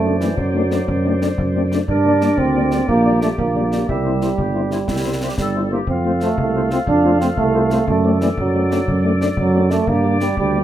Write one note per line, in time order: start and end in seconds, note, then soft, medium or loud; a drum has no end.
0.00 0.30 F#2 medium
0.00 0.20 A3 medium
0.00 1.84 C5 medium
0.00 1.84 D5 medium
0.05 0.11 A3 soft
0.05 0.11 C4 soft
0.05 0.11 D4 soft
0.05 0.11 D5 soft
0.20 0.38 E3 medium
0.20 0.27 A3 soft
0.20 0.27 C4 soft
0.20 0.27 D4 soft
0.20 0.28 D5 soft
0.20 snare soft
0.37 0.80 F#2 medium
0.37 1.21 F#3 medium
0.37 concert bass drum medium
0.54 0.60 A3 soft
0.54 0.60 C4 soft
0.54 0.60 D4 soft
0.54 0.61 D5 soft
0.71 0.78 A3 soft
0.71 0.77 C4 medium
0.71 0.78 D4 soft
0.71 0.78 D5 soft
0.71 snare soft
0.88 1.30 F#2 medium
0.88 concert bass drum medium
1.04 1.11 A3 soft
1.04 1.11 C4 medium
1.04 1.11 D4 soft
1.04 1.12 D5 soft
1.21 1.27 A3 medium
1.21 1.27 C4 medium
1.21 1.27 D4 soft
1.21 1.28 D5 medium
1.21 snare soft
1.38 1.80 F#2 medium
1.38 concert bass drum medium
1.55 1.61 A3 medium
1.55 1.61 C4 medium
1.55 1.61 D4 soft
1.55 1.62 D5 medium
1.72 1.78 A3 medium
1.72 1.78 C4 soft
1.72 1.78 D4 medium
1.72 1.79 D5 medium
1.72 snare soft
1.88 2.30 G2 medium
1.88 2.40 D4 medium
1.88 2.85 A#4 medium
1.88 3.85 D5 medium
1.88 concert bass drum medium
2.05 2.11 G3 medium
2.05 2.11 A#3 medium
2.05 2.11 D4 medium
2.05 2.12 D5 medium
2.21 2.28 G3 soft
2.21 2.28 A#3 medium
2.21 2.28 D4 medium
2.21 2.27 D5 medium
2.21 snare soft
2.37 2.80 D2 medium
2.37 2.88 C4 medium
2.37 concert bass drum medium
2.55 2.61 G3 medium
2.55 2.61 A#3 soft
2.55 2.61 D4 medium
2.55 2.61 D5 soft
2.71 2.78 G3 soft
2.71 2.78 A#3 soft
2.71 2.77 D4 medium
2.71 2.77 D5 medium
2.71 snare soft
2.88 3.30 A#1 medium
2.88 3.20 A#3 medium
2.88 3.84 G4 medium
2.88 concert bass drum medium
3.05 3.11 G3 soft
3.05 3.11 A#3 soft
3.05 3.11 D4 soft
3.05 3.11 D5 soft
3.22 3.28 G3 soft
3.22 3.29 A3 medium
3.22 3.28 A#3 soft
3.22 3.28 D4 soft
3.22 3.28 D5 soft
3.22 snare soft
3.38 3.80 A#1 medium
3.38 3.85 A#3 medium
3.38 concert bass drum medium
3.55 3.61 G3 soft
3.55 3.61 A#3 soft
3.55 3.61 D4 soft
3.55 3.61 D5 soft
3.72 3.78 G3 soft
3.72 3.78 A#3 soft
3.72 3.78 D4 soft
3.72 3.78 D5 soft
3.72 snare soft
3.88 4.30 C2 medium
3.88 5.35 G3 medium
3.88 4.32 G4 soft
3.88 4.32 E5 soft
3.88 concert bass drum medium
4.05 4.11 G3 soft
4.05 4.11 C4 soft
4.05 4.11 E4 soft
4.05 4.11 C5 soft
4.21 4.28 G3 soft
4.21 4.28 C4 soft
4.21 4.28 E4 soft
4.21 4.27 C5 soft
4.21 snare soft
4.38 4.80 G1 soft
4.38 4.69 G4 medium
4.38 concert bass drum medium
4.55 4.61 G3 soft
4.55 4.61 C4 soft
4.55 4.61 E4 soft
4.55 4.61 C5 soft
4.71 4.78 G3 soft
4.71 4.77 C4 soft
4.71 4.79 E4 soft
4.71 4.77 E4 soft
4.71 4.78 C5 soft
4.71 snare soft
4.88 5.30 C2 soft
4.88 5.19 E4 soft
4.88 concert bass drum medium
4.88 snare soft
5.05 5.11 G3 soft
5.05 5.11 C4 soft
5.05 5.11 E4 soft
5.05 5.11 C5 soft
5.22 5.28 G3 soft
5.22 5.28 C4 soft
5.22 5.28 E4 soft
5.22 5.30 G4 soft
5.22 5.28 C5 soft
5.37 5.79 G1 soft
5.37 5.69 G3 medium
5.37 5.70 A4 medium
5.37 concert bass drum medium
5.37 snare soft
5.55 5.61 G3 soft
5.55 5.61 C4 soft
5.55 5.61 E4 soft
5.55 5.61 C5 soft
5.72 5.78 G3 soft
5.72 5.79 A#3 medium
5.72 5.78 C4 soft
5.72 5.78 E4 soft
5.72 5.88 G4 soft
5.72 5.78 C5 soft
5.87 6.30 F2 medium
5.87 6.19 C4 medium
5.87 7.85 A4 medium
5.87 7.85 F5 medium
5.87 concert bass drum medium
6.04 6.10 A3 soft
6.04 6.10 C4 soft
6.04 6.10 F4 soft
6.04 6.11 C5 soft
6.20 6.27 A3 soft
6.20 6.37 A3 medium
6.20 6.27 C4 soft
6.20 6.27 F4 soft
6.20 6.28 C5 soft
6.20 snare soft
6.38 6.76 C2 medium
6.38 6.70 A3 medium
6.38 concert bass drum medium
6.55 6.61 A3 soft
6.55 6.61 C4 soft
6.55 6.61 F4 soft
6.55 6.61 C5 soft
6.71 6.78 A3 soft
6.71 6.77 C4 soft
6.71 6.80 C4 medium
6.71 6.78 F4 soft
6.71 6.77 C5 soft
6.71 snare soft
6.87 7.30 F2 medium
6.87 7.19 D4 medium
6.87 concert bass drum medium
7.05 7.11 A3 soft
7.05 7.11 C4 soft
7.05 7.11 F4 soft
7.05 7.11 C5 soft
7.21 7.27 A3 soft
7.21 7.29 C4 medium
7.21 7.28 C4 soft
7.21 7.28 F4 soft
7.21 7.27 C5 soft
7.21 snare soft
7.37 7.80 C2 medium
7.37 7.84 A3 medium
7.37 concert bass drum medium
7.54 7.61 A3 soft
7.54 7.61 C4 soft
7.54 7.61 F4 soft
7.54 7.60 C5 soft
7.70 7.78 A3 soft
7.70 7.78 C4 soft
7.70 7.77 F4 soft
7.70 7.77 C5 soft
7.70 snare soft
7.87 8.30 F#2 medium
7.87 8.19 A3 medium
7.87 9.85 A4 medium
7.87 9.89 D5 medium
7.87 concert bass drum medium
8.04 8.10 A3 medium
8.04 8.10 C4 soft
8.04 8.10 D4 soft
8.04 8.11 D5 soft
8.21 8.29 E3 medium
8.21 8.27 A3 soft
8.21 8.27 C4 soft
8.21 8.27 D4 medium
8.21 8.28 D5 medium
8.21 snare soft
8.37 8.80 F#2 medium
8.37 9.18 F#3 medium
8.37 concert bass drum medium
8.54 8.60 A3 medium
8.54 8.60 C4 medium
8.54 8.60 D4 soft
8.54 8.60 D5 soft
8.71 8.77 A3 medium
8.71 8.77 C4 soft
8.71 8.77 D4 soft
8.71 8.77 D5 medium
8.71 snare soft
8.88 9.30 F#2 medium
8.88 concert bass drum medium
9.04 9.10 A3 medium
9.04 9.10 C4 medium
9.04 9.10 D4 medium
9.04 9.11 D5 medium
9.21 9.27 A3 medium
9.21 9.27 C4 soft
9.21 9.27 D4 soft
9.21 9.28 D5 medium
9.21 snare soft
9.37 9.80 F#2 medium
9.37 9.72 F#3 medium
9.37 concert bass drum medium
9.54 9.60 A3 soft
9.54 9.60 C4 soft
9.54 9.60 D4 medium
9.54 9.61 D5 medium
9.70 9.89 A3 medium
9.70 9.77 A3 soft
9.70 9.77 C4 medium
9.70 9.76 D4 medium
9.70 9.76 D5 medium
9.70 snare soft
9.87 10.29 G2 medium
9.87 10.19 A#3 medium
9.87 10.64 G4 medium
9.87 10.64 D5 medium
9.87 concert bass drum medium
10.04 10.10 G3 medium
10.04 10.10 A#3 soft
10.04 10.10 D4 soft
10.04 10.11 D5 soft
10.20 10.36 G3 medium
10.20 10.26 G3 soft
10.20 10.26 A#3 soft
10.20 10.26 D4 soft
10.20 10.28 D5 soft
10.20 snare soft
10.37 10.64 D2 medium
10.37 10.64 G3 medium
10.37 concert bass drum medium
10.54 10.60 G3 soft
10.54 10.60 A#3 soft
10.54 10.60 D4 soft
10.54 10.61 D5 soft